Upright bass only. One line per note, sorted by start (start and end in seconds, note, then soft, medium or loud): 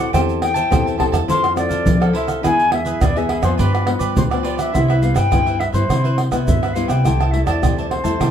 0.14 0.63 E2 medium
0.71 1.08 E2 medium
1.13 1.26 E2 medium
1.28 1.65 F2 medium
1.70 1.83 F2 medium
1.86 2.10 F3 medium
2.43 2.92 E2 medium
3.01 3.38 E2 medium
3.43 3.56 F2 loud
3.59 3.96 G2 medium
4.00 4.13 G2 medium
4.17 4.41 D2 medium
4.74 5.11 C2 loud
5.16 5.66 G2 medium
5.73 5.86 G2 medium
5.89 6.26 C3 medium
6.31 6.44 C2 medium
6.47 6.84 G2 medium
6.89 7.02 C3 medium
7.05 7.42 C2 medium
7.46 7.96 E2 medium
8.04 8.17 E2 loud
8.20 8.31 C3 medium